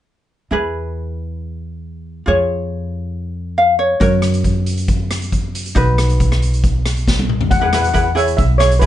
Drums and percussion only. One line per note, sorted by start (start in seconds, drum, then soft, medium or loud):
4.01 kick medium
4.01 closed hi-hat soft
4.22 cross-stick medium
4.22 closed hi-hat medium
4.34 closed hi-hat medium
4.44 kick medium
4.44 closed hi-hat medium
4.66 closed hi-hat medium
4.77 closed hi-hat medium
4.88 kick medium
4.88 closed hi-hat soft
5.11 cross-stick medium
5.11 closed hi-hat medium
5.22 closed hi-hat soft
5.32 kick medium
5.32 closed hi-hat medium
5.55 closed hi-hat medium
5.66 closed hi-hat medium
5.76 kick medium
5.76 closed hi-hat medium
5.98 cross-stick medium
5.98 closed hi-hat medium
6.10 closed hi-hat soft
6.20 kick medium
6.20 closed hi-hat medium
6.32 cross-stick medium
6.42 closed hi-hat medium
6.54 closed hi-hat medium
6.64 kick medium
6.64 closed hi-hat soft
6.86 cross-stick medium
6.86 closed hi-hat medium
6.97 closed hi-hat soft
7.08 kick medium
7.08 snare soft
7.19 high tom soft
7.29 mid tom medium
7.41 floor tom medium
7.51 kick medium
7.51 closed hi-hat soft
7.73 cross-stick medium
7.73 closed hi-hat medium
7.84 closed hi-hat medium
7.95 kick medium
7.95 closed hi-hat medium
8.17 closed hi-hat medium
8.28 closed hi-hat medium
8.38 kick medium
8.38 closed hi-hat medium
8.60 cross-stick medium
8.60 closed hi-hat medium
8.71 closed hi-hat medium
8.82 kick medium
8.82 closed hi-hat medium